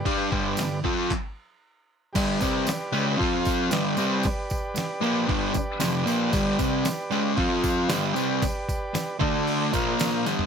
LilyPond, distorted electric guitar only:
\new Staff \with { instrumentName = "Distorted electric guitar" } { \clef bass \time 4/4 \key g \mixolydian \tempo 4 = 115 <g d' g'>8 <g, d g>8 <g, d>8 <f c' f'>8 r2 | <g, d g>8 <c g c'>8 r8 <cis aes cis'>8 <f c' f'>4 <g, d g>8 <c g c'>8 | r4. <bes, f bes>8 <g, d g>8 r8 <f, c f>8 <bes, f bes>8 | <g, d g>8 <c g c'>8 r8 <cis aes cis'>8 <f c' f'>4 <g, d g>8 <c g c'>8 |
r4. <d a d'>4 <bes, f bes>4 <g, d g>8 | }